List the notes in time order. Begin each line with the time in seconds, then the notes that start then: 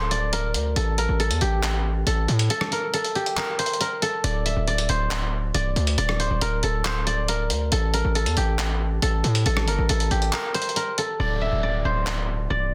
Already playing: D1 A4 C5 D5, downlifter
0.11 D5, closed hi-hat
0.33 A#4, closed hi-hat
0.54 D2, closed hi-hat
0.76 A1 A4, closed hi-hat
0.98 A#4, closed hi-hat
1.09 A1
1.20 A4, closed hi-hat
1.31 E2, closed hi-hat
1.41 A1 G4, closed hi-hat
1.63 clap, closed hi-hat
2.07 A1 A4, closed hi-hat
2.28 A2, closed hi-hat
2.39 closed hi-hat
2.50 A4, closed hi-hat
2.61 cross-stick
2.72 A#4, closed hi-hat
2.94 A4, closed hi-hat
3.04 closed hi-hat
3.15 G4, closed hi-hat
3.26 closed hi-hat
3.37 A#4, clap, closed hi-hat
3.59 C5, closed hi-hat
3.66 closed hi-hat
3.73 closed hi-hat
3.80 A#4, closed hi-hat
4.02 A4, closed hi-hat
4.24 D1 D5, closed hi-hat
4.46 E5, closed hi-hat
4.57 D1
4.67 D5, closed hi-hat
4.78 closed hi-hat
4.89 D1 C5, closed hi-hat
5.11 clap, closed hi-hat
5.54 C1 D5, closed hi-hat
5.76 D2, closed hi-hat
5.87 closed hi-hat
5.98 D1 D5, closed hi-hat
6.09 cross-stick
6.20 C5, closed hi-hat
6.31 D1
6.41 D1 A#4, closed hi-hat
6.63 D1 A4, closed hi-hat
6.85 C5, clap, closed hi-hat
7.07 D5, closed hi-hat
7.28 A#4, closed hi-hat
7.50 D2, closed hi-hat
7.72 A1 A4, closed hi-hat
7.94 A#4, closed hi-hat
8.05 A1
8.15 A4, closed hi-hat
8.26 E2, closed hi-hat
8.37 A1 G4, closed hi-hat
8.59 clap, closed hi-hat
9.02 A1 A4, closed hi-hat
9.24 A2, closed hi-hat
9.35 closed hi-hat
9.46 A1 A4, closed hi-hat
9.57 cross-stick
9.68 G1 A#4, closed hi-hat
9.78 A1
9.89 A1 A4, closed hi-hat
10.00 closed hi-hat
10.11 A1 G4, closed hi-hat
10.22 closed hi-hat
10.33 A#4, clap, closed hi-hat
10.54 C5, closed hi-hat
10.62 closed hi-hat
10.69 closed hi-hat
10.76 A#4, closed hi-hat
10.98 A4, closed hi-hat
11.20 D1 D5, downlifter
11.41 E5
11.52 D1
11.63 D5
11.85 D1 C5
12.07 clap
12.50 C1 D5